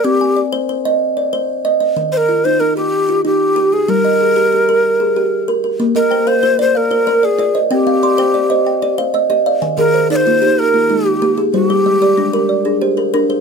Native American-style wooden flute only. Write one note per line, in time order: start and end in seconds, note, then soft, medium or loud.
0.04 0.40 G4 medium
2.12 2.18 C5 medium
2.17 2.46 A#4 medium
2.45 2.62 C5 medium
2.60 2.76 A#4 medium
2.77 3.21 G4 medium
3.26 3.75 G4 medium
3.73 3.91 G#4 medium
3.89 5.48 A#4 medium
5.96 6.29 A#4 medium
6.28 6.59 C5 medium
6.61 6.78 C5 medium
6.77 7.26 A#4 medium
7.25 7.56 G#4 medium
7.73 8.95 G4 medium
9.78 10.08 A#4 loud
10.11 10.17 D5 medium
10.16 10.61 C5 loud
10.59 11.07 A#4 loud
11.06 11.38 G4 medium
11.54 11.71 F#4 loud
11.71 12.78 G4 loud